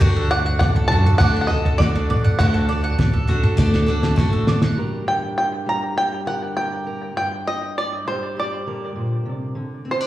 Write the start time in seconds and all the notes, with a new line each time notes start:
0.00 D2 D3 A3 D4 F#4 A4, kick, floor tom
0.16 A4
0.31 D5 F#5
0.46 F#5
0.59 A1 D5 F#5, kick, snare, floor tom
0.76 A4, floor tom
0.88 F#2 F#4 A4 A5, floor tom
0.92 D4 F#4
1.06 A4, mid tom
1.18 D3 A3 D4 F#4 A4 F#5 D6, kick, floor tom
1.36 F#5
1.41 F#5
1.47 A4 D#5, floor tom
1.51 F#4
1.65 A4, floor tom
1.78 D2 A3 D4 F#4 A4 D5, kick, snare
1.95 A4
2.09 A1 D5, floor tom, mid tom
2.24 F#5, mid tom
2.39 D2 D3 A3 D4 F#4 A4 F#5, kick, floor tom
2.54 A4
2.68 D4 F#4 A4 D5
2.84 F#5
2.99 A1 D5, kick, snare, floor tom
3.13 A4, floor tom
3.27 D4 F#4 A4, floor tom
3.43 A4, mid tom
3.57 D2 D3 A3 D4 F#4 A4 D5, kick, snare
3.74 F#5, snare
3.86 D4 F#4 A4 D5
4.03 A4, snare
4.16 A1 A3 D4 F#4 A4, kick, snare
4.33 A4
4.47 D5, snare
4.62 F#5, snare
4.76 G2 G3 D4 G4 A#4
5.07 D4 G5
5.38 G5
5.66 G3 A#5
5.96 G4 G5
6.26 D3 A#4 F#5
6.57 G4 G5
6.87 A#4
7.15 G2 G5
7.47 D#5
7.78 D5
8.07 G3 C5
8.37 G4 D5
8.66 D3 A#4
8.96 A#2
9.26 C3
9.55 D3
9.85 C4
9.91 C5
10.01 D4